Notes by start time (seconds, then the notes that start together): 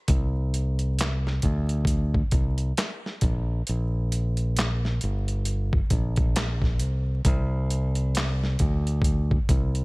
0.08 C2, kick, closed hi-hat
0.54 closed hi-hat
0.79 closed hi-hat
0.99 snare, clap, closed hi-hat
1.27 snare
1.42 D2, kick, closed hi-hat
1.69 closed hi-hat
1.85 kick, closed hi-hat
2.14 kick
2.31 C2, kick, closed hi-hat
2.58 closed hi-hat
2.77 snare, clap, closed hi-hat
3.06 snare
3.21 A#1, kick, closed hi-hat
3.67 A#1, closed hi-hat
4.12 closed hi-hat
4.37 closed hi-hat
4.57 snare, clap, closed hi-hat
4.85 snare
5.01 G1, closed hi-hat
5.28 closed hi-hat
5.45 closed hi-hat
5.73 kick
5.90 A#1, kick, closed hi-hat
6.16 kick, closed hi-hat
6.36 snare, clap, closed hi-hat
6.62 kick, snare
6.80 C2, closed hi-hat
7.25 C2, kick, closed hi-hat
7.70 closed hi-hat
7.95 closed hi-hat
8.15 snare, clap, closed hi-hat
8.43 snare
8.59 D2, kick, closed hi-hat
8.87 closed hi-hat
9.02 kick, closed hi-hat
9.31 kick
9.49 C2, kick, closed hi-hat
9.75 closed hi-hat